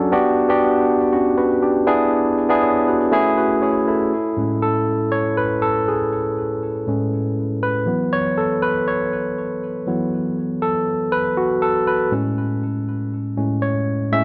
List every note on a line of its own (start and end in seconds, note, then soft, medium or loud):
0.00 0.14 F#3 medium
0.00 0.14 C#4 medium
0.00 0.12 D4 medium
0.00 0.13 F#4 medium
0.00 0.14 G#4 medium
0.00 0.14 A4 medium
0.12 0.46 B3 medium
0.12 0.46 D4 medium
0.12 0.46 F#4 medium
0.12 0.46 G4 loud
0.49 1.39 B3 medium
0.49 1.12 D4 medium
0.49 1.12 F#4 medium
0.49 1.12 G4 medium
1.13 1.36 C#4 medium
1.13 1.36 F#4 medium
1.38 1.61 F#4 medium
1.38 1.61 B4 medium
1.63 1.85 D4 medium
1.63 2.10 G4 medium
1.86 2.43 B3 medium
1.86 2.43 D4 medium
1.86 2.43 E4 medium
1.86 2.43 G#4 loud
2.49 3.12 B3 medium
2.49 3.12 D4 medium
2.49 3.11 E4 medium
2.49 2.62 G#4 medium
2.62 2.86 G#4 medium
2.62 2.86 C#5 medium
2.88 3.35 F#4 medium
2.88 3.35 B4 medium
3.12 3.34 A3 medium
3.12 3.34 C#4 medium
3.12 3.35 E4 medium
3.12 3.35 G#4 medium
3.37 3.61 F#4 medium
3.37 3.61 B4 medium
3.62 3.86 G#4 medium
3.62 3.86 C#5 medium
3.87 4.35 E4 medium
3.87 4.35 A4 medium
4.37 4.70 A2 medium
4.37 4.70 G#3 soft
4.37 4.71 C#4 medium
4.62 5.09 A4 medium
5.12 5.35 C#5 loud
5.37 5.63 B4 medium
5.62 5.85 A4 medium
5.88 6.11 G#4 medium
6.87 7.83 A2 medium
6.87 7.83 G#3 soft
6.87 7.84 C#4 medium
7.63 8.14 B4 medium
7.86 9.82 E3 medium
7.86 9.83 F#3 soft
7.86 9.83 B3 medium
8.13 8.38 C#5 loud
8.38 8.61 A4 medium
8.63 8.86 B4 medium
8.88 9.11 C#5 medium
9.87 10.58 E3 medium
9.87 10.58 F#3 soft
9.87 10.59 B3 medium
10.62 11.14 A4 medium
11.12 11.38 B4 loud
11.37 11.63 F#4 medium
11.62 11.88 A4 medium
11.87 12.10 B4 medium
12.11 13.36 A2 medium
12.11 13.36 G#3 soft
12.11 13.36 C#4 medium
13.37 13.59 A2 soft
13.37 13.60 G#3 soft
13.37 13.60 C#4 medium
13.62 14.09 C#5 medium
14.12 14.24 A2 medium
14.12 14.24 G#3 soft
14.12 14.24 C#4 medium
14.12 14.24 E5 loud